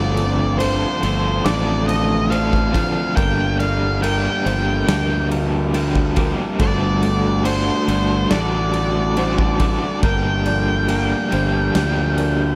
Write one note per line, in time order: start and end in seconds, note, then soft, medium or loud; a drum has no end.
0.00 0.84 G1 loud
0.00 1.89 G2 medium
0.00 0.58 D3 loud
0.00 9.99 D3 medium
0.00 0.60 F3 loud
0.00 0.59 A3 medium
0.00 0.21 D4 medium
0.00 0.61 D4 medium
0.00 0.60 A4 loud
0.00 0.61 A4 loud
0.00 3.14 A4 medium
0.00 3.14 C5 medium
0.00 0.58 D5 loud
0.00 6.56 F5 medium
0.17 1.44 C4 medium
0.17 ride medium
0.59 1.01 D3 medium
0.59 1.03 F3 loud
0.59 1.02 A3 medium
0.59 1.04 D4 loud
0.59 1.03 A4 medium
0.59 1.45 C5 loud
0.59 1.46 C5 medium
0.59 ride loud
1.03 1.40 G1 medium
1.03 1.44 D3 medium
1.03 2.73 F3 medium
1.03 1.45 F3 loud
1.03 1.45 A3 medium
1.03 1.46 D4 medium
1.03 1.46 A4 loud
1.03 ride medium
1.44 2.91 A1 medium
1.44 2.29 D3 loud
1.44 2.30 F3 loud
1.44 2.30 A3 loud
1.44 2.30 C4 medium
1.44 2.31 D4 loud
1.44 2.31 A4 loud
1.44 1.87 D5 loud
1.44 2.31 D6 medium
1.44 snare loud
1.44 ride loud
1.88 3.17 A4 medium
1.88 2.33 D#5 medium
1.88 ride medium
2.30 2.71 D3 medium
2.30 2.72 F3 medium
2.30 2.72 A3 medium
2.30 3.17 C4 medium
2.30 2.73 D4 medium
2.30 2.73 A4 medium
2.30 3.17 C5 medium
2.30 3.16 F5 loud
2.30 ride loud
2.53 kick medium
2.53 snare soft
2.72 3.14 D3 loud
2.72 3.14 F3 medium
2.72 3.17 F3 medium
2.72 3.14 A3 medium
2.72 3.17 D4 loud
2.72 3.15 A4 medium
2.72 kick medium
2.72 ride medium
3.16 4.27 G1 loud
3.16 5.32 G2 medium
3.16 4.02 G2 loud
3.16 4.02 D3 loud
3.16 4.01 G3 medium
3.16 4.01 A#3 medium
3.16 4.02 D4 loud
3.16 4.02 G4 medium
3.16 6.57 G4 medium
3.16 3.60 A#4 loud
3.16 6.57 A#4 medium
3.16 3.57 G5 loud
3.16 kick loud
3.16 ride loud
3.59 4.88 A#3 medium
3.59 4.03 D5 medium
3.59 4.02 F5 loud
3.59 ride medium
4.02 4.44 G2 medium
4.02 4.44 D3 loud
4.02 4.44 G3 medium
4.02 4.45 A#3 loud
4.02 4.46 D4 medium
4.02 7.45 D4 medium
4.02 4.46 G4 loud
4.02 4.46 A#4 medium
4.02 5.27 G5 medium
4.02 ride loud
4.45 4.82 G1 medium
4.45 4.88 G2 medium
4.45 4.89 D3 medium
4.45 6.17 F3 medium
4.45 4.86 G3 medium
4.45 4.87 A#3 medium
4.45 4.88 D4 medium
4.45 4.87 G4 medium
4.45 5.31 C5 medium
4.45 ride medium
4.87 6.34 D2 medium
4.87 5.74 G2 loud
4.87 5.74 D3 loud
4.87 5.73 G3 loud
4.87 5.74 A#3 loud
4.87 5.74 A#3 medium
4.87 5.74 D4 loud
4.87 5.74 G4 loud
4.87 snare loud
4.87 ride loud
5.31 6.15 A#4 medium
5.31 6.61 A#4 medium
5.31 ride medium
5.74 6.17 G2 medium
5.74 6.17 D3 medium
5.74 6.15 G3 medium
5.74 6.15 A#3 medium
5.74 6.61 A#3 medium
5.74 6.16 D4 medium
5.74 6.16 G4 loud
5.74 ride loud
5.95 kick medium
6.16 6.58 G2 medium
6.16 6.58 D3 loud
6.16 6.61 F3 medium
6.16 6.57 G3 loud
6.16 6.57 A#3 loud
6.16 6.60 D4 medium
6.16 6.58 G4 loud
6.16 6.60 A#4 medium
6.16 kick medium
6.16 ride medium
6.59 7.70 G1 loud
6.59 7.44 D3 loud
6.59 7.43 G3 medium
6.59 7.87 G3 medium
6.59 7.44 A3 medium
6.59 7.45 D4 medium
6.59 7.44 F#4 loud
6.59 10.00 F#4 medium
6.59 7.46 A4 loud
6.59 10.00 A4 medium
6.59 7.45 D5 medium
6.59 10.00 F#5 loud
6.59 kick loud
6.59 ride loud
7.03 8.31 A3 medium
7.03 ride medium
7.44 7.88 D3 loud
7.44 7.86 G3 medium
7.44 7.87 A3 medium
7.44 10.88 D4 medium
7.44 7.88 D4 loud
7.44 7.87 F#4 loud
7.44 8.31 C5 medium
7.44 8.31 C5 loud
7.44 ride loud
7.87 8.25 G1 medium
7.87 8.29 D3 medium
7.87 8.29 G3 medium
7.87 9.59 G3 medium
7.87 8.29 A3 medium
7.87 8.31 D4 loud
7.87 8.30 F#4 loud
7.87 ride medium
8.30 9.77 A1 loud
8.30 9.16 D3 loud
8.30 9.16 G3 loud
8.30 9.16 A3 loud
8.30 9.16 A3 medium
8.30 9.17 D4 loud
8.30 9.17 F#4 loud
8.30 9.17 D5 medium
8.30 10.00 D5 loud
8.30 snare loud
8.30 ride loud
8.73 10.03 F#4 medium
8.73 ride medium
9.17 9.58 D3 medium
9.17 9.58 G3 medium
9.17 9.59 A3 medium
9.17 10.04 A3 medium
9.17 9.60 D4 medium
9.17 9.59 F#4 medium
9.17 10.03 C5 medium
9.17 ride loud
9.38 kick medium
9.59 10.00 D3 medium
9.59 10.00 G3 medium
9.59 10.03 G3 medium
9.59 10.01 A3 medium
9.59 10.03 D4 medium
9.59 10.01 F#4 loud
9.59 kick medium
9.59 ride medium
10.02 11.13 G1 loud
10.02 10.87 G2 loud
10.02 12.19 G2 medium
10.02 10.88 D3 loud
10.02 10.87 G3 medium
10.02 10.88 A#3 medium
10.02 10.88 D4 medium
10.02 12.55 D4 medium
10.02 10.89 G4 loud
10.02 12.55 G4 medium
10.02 10.47 A#4 loud
10.02 12.55 A#4 medium
10.02 12.55 F5 medium
10.02 12.55 G5 loud
10.02 kick loud
10.02 ride medium
10.46 11.74 F3 medium
10.46 10.90 D5 medium
10.46 ride medium
10.88 11.30 G2 loud
10.88 11.30 D3 loud
10.88 11.29 G3 medium
10.88 12.55 A#3 medium
10.88 11.30 A#3 loud
10.88 11.31 D4 loud
10.88 11.31 G4 loud
10.88 11.32 A#4 medium
10.88 ride loud
11.31 11.69 G1 medium
11.31 11.72 G2 medium
11.31 11.73 D3 medium
11.31 12.55 D3 medium
11.31 11.74 G3 medium
11.31 11.74 A#3 medium
11.31 11.75 D4 medium
11.31 11.75 G4 loud
11.31 12.19 C5 medium
11.31 ride medium
11.73 12.55 D2 medium
11.73 12.55 G2 loud
11.73 12.55 D3 loud
11.73 12.55 F3 medium
11.73 12.55 G3 loud
11.73 12.55 A#3 loud
11.73 12.55 D4 loud
11.73 12.55 G4 loud
11.73 snare loud
11.73 ride loud
12.18 12.55 D4 medium
12.18 12.55 A#4 medium
12.18 ride medium